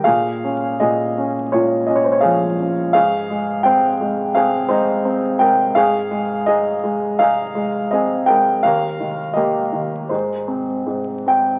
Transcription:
<<
  \new Staff \with { instrumentName = "Upright piano" } { \time 4/4 \key aes \major \tempo 4 = 84 <aes' f''>4 <aes' ees''>4 <f' des''>8 ees''32 des''32 c''32 des''32 <aes' f''>8. r16 | <aes' f''>4 <c'' g''>4 <aes' f''>8 <ees' c''>4 <bes' g''>8 | <aes' f''>4 <aes' ees''>4 <aes' f''>4 <aes' ees''>8 <bes' g''>8 | <bes' f''>4 <g' ees''>4 <ees' c''>4. g''8 | }
  \new Staff \with { instrumentName = "Upright piano" } { \clef bass \time 4/4 \key aes \major bes,8 des'8 bes,8 des'8 bes,8 des'8 f8 des'8 | aes,8 aes8 c'8 aes8 c'8 aes8 c'8 aes8 | aes,8 aes8 ees'8 aes8 ees'8 aes8 c'8 aes8 | ees,8 ees8 bes8 ees8 aes,8 c'8 aes,8 c'8 | }
>>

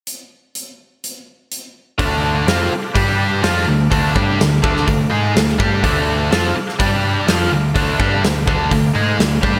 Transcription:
<<
  \new Staff \with { instrumentName = "Tonewheel organ" } { \time 4/4 \key d \minor \tempo 4 = 125 << { r1 | d'''1~ | d'''1~ | d'''1~ |
d'''1 | } \\ { r1 | <a' f''>2 <g' d''>4 <a' f''>4~ | <a' f''>1~ | <a' f''>2 <g' d''>4 <a' f''>4~ |
<a' f''>1 | } >> }
  \new Staff \with { instrumentName = "Distorted electric guitar" } { \time 4/4 \key d \minor r1 | <d a d'>4 <f c' f'>8 r8 <g d' g'>4 <f c' f'>8 <d a>8 | <d a d'>8 <g d' g'>8 <d a>8 <d a d'>8 <d a>8 <gis ees' gis'>8 <d a>8 <g d' g'>8 | <d a d'>4 <f c' f'>8 r8 <g d' g'>4 <f c' f'>8 <d a>8 |
<d a d'>8 <g d' g'>8 <d a>8 <d a d'>8 <d a>8 <gis ees' gis'>8 <d a>8 <g d' g'>8 | }
  \new Staff \with { instrumentName = "Overdriven electric guitar" } { \time 4/4 \key d \minor r1 | <d a d'>4 <f c' f'>8 r8 <g d' g'>4 <f c' f'>8 <d a>8 | <d a d'>8 <g d' g'>8 <d a>8 <d a d'>8 <d a>8 <gis ees' gis'>8 <d a>8 <g d' g'>8 | <d a d'>4 <f c' f'>8 r8 <g d' g'>4 <f c' f'>8 <d a>8 |
<d a d'>8 <g d' g'>8 <d a>8 <d a d'>8 <d a>8 <gis ees' gis'>8 <d a>8 <g d' g'>8 | }
  \new Staff \with { instrumentName = "Picked electric bass" } { \clef bass \time 4/4 \key d \minor r1 | d,4 f,8 r8 g,4 f,8 d,8 | d,8 g,8 d,8 d,8 d,8 gis,8 d,8 g,8 | d,4 f,8 r8 g,4 f,8 d,8 |
d,8 g,8 d,8 d,8 d,8 gis,8 d,8 g,8 | }
  \new DrumStaff \with { instrumentName = "Drums" } \drummode { \time 4/4 hh4 hh4 hh4 hh4 | <hho bd>4 <hho sn>4 <hho bd>4 <hho sn>16 sn8. | <hho bd>8 bd8 <hho sn>8 bd16 sn16 <hho bd>4 <hho sn>16 sn16 bd8 | <hho bd>4 <hho sn>8. sn16 <hho bd>4 <hho sn>4 |
<hho bd>8 bd8 <hho sn>8 bd8 <hho bd>4 <hho sn>8 bd8 | }
>>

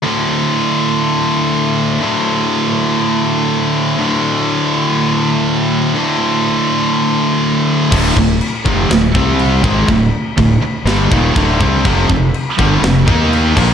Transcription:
<<
  \new Staff \with { instrumentName = "Overdriven electric guitar" } { \clef bass \time 4/4 \key d \phrygian \tempo 4 = 122 r1 | r1 | r1 | r1 |
<d, a, d>8 <d, a,>8 r8 <f, c f>8 <d, a,>8 <c g c'>4 <gis, ees gis>8 | <d, a,>8 r8 <d, a,>8 r8 <g, d g>8 <ees, bes, ees>8 <d, a, d>8 <c g c'>8 | <f, c f>8 <f, c>8 r8 <g, d g>8 <f, c>8 <ees bes ees'>4 <bes, f bes>8 | }
  \new Staff \with { instrumentName = "Distorted electric guitar" } { \clef bass \time 4/4 \key d \phrygian <d, a, d>1 | <d, a, d>1 | <d, a, d>1 | <d, a, d>1 |
<d, a, d>8 <d, a,>8 r8 <f, c f>8 <d, a,>8 <c g c'>4 <gis, ees gis>8 | <d, a,>8 r8 <d, a,>8 r8 <g, d g>8 <ees, bes, ees>8 <d, a, d>8 <c g c'>8 | <f, c f>8 <f, c>8 r8 <g, d g>8 <f, c>8 <ees bes ees'>4 <bes, f bes>8 | }
  \new Staff \with { instrumentName = "Distorted electric guitar" } { \clef bass \time 4/4 \key d \phrygian <d, a, d>1 | <d, a, d>1 | <d, a, d>1 | <d, a, d>1 |
<d, a, d>8 <d, a,>8 r8 <f, c f>8 <d, a,>8 <c g c'>4 <gis, ees gis>8 | <d, a,>8 r8 <d, a,>8 r8 <g, d g>8 <ees, bes, ees>8 <d, a, d>8 <c g c'>8 | <f, c f>8 <f, c>8 r8 <g, d g>8 <f, c>8 <ees bes ees'>4 <bes, f bes>8 | }
  \new Staff \with { instrumentName = "Fingered electric bass" } { \clef bass \time 4/4 \key d \phrygian r1 | r1 | r1 | r1 |
d,,8 d,,8 r8 f,,8 d,,8 c,4 gis,,8 | d,,8 r8 d,,8 r8 g,,8 ees,,8 d,,8 c,8 | f,,8 f,,8 r8 g,,8 f,,8 ees,4 bes,,8 | }
  \new DrumStaff \with { instrumentName = "Drums" } \drummode { \time 4/4 r4 r4 r4 r4 | r4 r4 r4 r4 | r4 r4 r4 r4 | r4 r4 r4 r4 |
<cymc bd>8 bd8 cymc8 bd8 <cymc sn>8 bd8 cymc8 bd8 | <cymc bd>4 <cymc bd>4 <cymc sn>8 bd8 <cymc bd>8 bd8 | <cymc bd>8 bd8 cymc8 bd8 <cymc sn>8 bd8 cymc8 <cymc bd>8 | }
>>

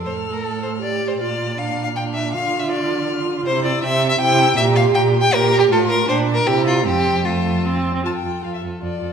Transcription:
<<
  \new Staff \with { instrumentName = "Violin" } { \time 3/4 \key f \major \tempo 4 = 158 f'''4 f'''2 | f'''4 f'''2 | f'''4 f'''2 | g'''8 e'''8 g'''8 e'''8 g'''8 e'''8 |
bes''8 c'''8 bes''8 c'''8 bes''8 c'''8 | c'''4 g''8 a''8 bes''4 | a''4 a''4. r8 | a''16 g''8. f''16 e''8. d''4 | }
  \new Staff \with { instrumentName = "Violin" } { \time 3/4 \key f \major \tuplet 3/2 { c''4 bes'8 } a'8 c''8 \tuplet 3/2 { d''4 c''8 } | d''4 \tuplet 3/2 { f''4 f''8 } g''8 e''8 | \tuplet 3/2 { f''4 e''8 } d''4 r4 | c''8 d''8 \tuplet 3/2 { e''4 e''8 } g''4 |
e''8 f''8 \tuplet 3/2 { g''4 g''8 bes'4 g'8 } | a'8 bes'8 \tuplet 3/2 { c''4 bes'8 } g'8 f'8 | g'4 f'4. r8 | a'8 a'8 a'8 a'8 a'8 a'8 | }
  \new Staff \with { instrumentName = "Viola" } { \time 3/4 \key f \major a'2 g'4 | f'4 d'4 d'4 | f'2 f'4 | e'4 c'4 e'4 |
g'2 g'4 | f'4 d'4 e'4 | c'4 a4 \tuplet 3/2 { c'4 c'8 } | f'8 f'8 f'8 f'8 f'8 f'8 | }
  \new Staff \with { instrumentName = "Cello" } { \clef bass \time 3/4 \key f \major a,2. | bes,2. | d2. | c4 c4 c4 |
bes,4 bes,4 bes,4 | a,4 bes,4 c4 | f,2~ f,8 r8 | f,8 f,8 f,8 f,8 f,8 f,8 | }
>>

